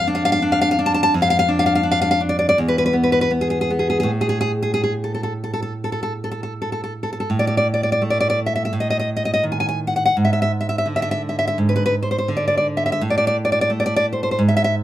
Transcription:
Already playing: F2
0.07 D4
0.15 F5
0.25 F5
0.32 F5
0.42 D4
0.52 F5
0.61 F5
0.71 F5
0.79 D4
0.86 A5
0.94 A5
1.03 A5
1.14 F2
1.22 F5
1.30 F5
1.39 F5
1.49 D4
1.59 F5
1.66 F5
1.75 F5
1.83 D4
1.91 F5
2.01 F5
2.11 F5
2.21 D4
2.29 D5
2.39 D5
2.49 D5
2.58 E2
2.68 B4
2.78 B4
2.86 B4
2.93 B3
3.03 B4
3.12 B4
3.21 B4
3.31 B3
3.41 G#4
3.50 G#4
3.61 G#4
3.70 B3
3.79 G#4
3.90 G#4
4.00 A2 G#4
4.21 G#4
4.29 G#4
4.41 G#4
4.63 G#4
4.74 G#4
4.83 G#4
5.04 A4
5.14 A4
5.23 A4
5.44 A4
5.54 A4
5.62 A4
5.84 A4
5.92 A4
6.03 A4
6.24 A4
6.31 A4
6.43 A4
6.62 A4
6.72 A4
6.84 A4
7.03 A4
7.13 A4
7.20 A4
7.30 A2
7.39 D5
7.47 D5
7.57 D5
7.74 D5
7.83 D5
7.92 D5
8.02 A3
8.10 D5
8.20 D5
8.30 D5
8.46 E5
8.56 E5
8.65 E5
8.73 A2
8.80 D#5
8.90 D#5
8.99 D#5
9.17 D#5
9.25 D#5
9.34 D#5
9.43 D#3
9.52 G#5
9.60 G#5
9.69 G#5
9.87 F#5
9.96 F#5
10.05 F#5
10.17 G#2
10.25 E5
10.33 E5
10.42 E5
10.61 E5
10.69 E5
10.78 E5
10.86 D3
10.96 E5
11.02 E5
11.11 E5
11.29 E5
11.39 E5
11.47 E5
11.58 G#2
11.69 B4
11.76 B4
11.86 B4
12.03 C5
12.11 C5
12.18 C5
12.28 D3
12.37 D5
12.48 D5
12.57 D5
12.77 E5
12.86 E5
12.92 E5
13.01 A2
13.10 D5
13.18 D5
13.27 D5
13.45 D5
13.52 D5
13.61 D5
13.70 A3
13.80 D5
13.86 D5
13.96 D5
14.13 C5
14.23 C5
14.31 C5
14.39 G#2
14.48 E5
14.57 E5
14.64 E5

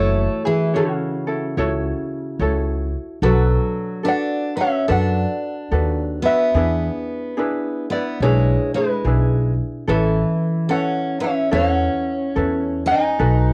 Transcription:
Already playing: F#1 A3 E4 F#4 A4 C#5
0.45 E3 E4 G#4
0.74 C#3 C#4 E4 F#4 A4 C#5
1.27 E4 F#4 A4
1.57 C#2 E4 F#4 A4 C#5
2.39 C#2 E4 F#4 A4 C#5
3.22 B1 F#3 D4 F#4 A4 B4
4.03 D4 F#4 A4 B4
4.08 D5 F#5
4.56 C#4 F#4 B4
4.61 C#5 E5
4.88 F#2 D4 F#4 A4 B4 D5 F#5
5.71 D#2 D4 F#4 A4 B4
6.22 B3 F#4 B4 E5
6.27 D4 B4
6.54 E2 D4 E4 G#4 B4
7.37 D4 E4 G#4 B4
7.90 B3 D4 E4 B4 D5
8.20 B1 G#3 D4 E4 G#4 B4 C#5
8.74 G#3 G#4 B4
9.05 B1 D4 E4 G#4 B4
9.88 A1 E3 C#4 E4 A4 B4
10.69 C#4 E4 A4 B4 C#5 F#5
11.20 C#4 E4 B4 E5
11.26 C#5
11.51 E2 C#4 E4 A4 B4 C#5 F5
11.69 F#5
12.36 E2 C#4 E4 A4 B4
12.86 D#4 B4 G#5
12.90 C#4 D#5
13.19 B1 D#4 F#4 A4 B4

